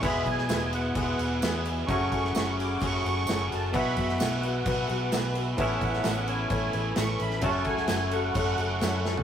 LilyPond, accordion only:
\new Staff \with { instrumentName = "Accordion" } { \time 4/4 \key fis \minor \tempo 4 = 130 b''8 gis''4 fis''2 r8 | cis'''8 cis'''8 cis'''8 d'''8 cis'''4. a''8 | b''4 fis''2 r4 | fis''8 fis''4 gis''4. cis'''8 b''8 |
a''8 gis''4 fis''2 r8 | }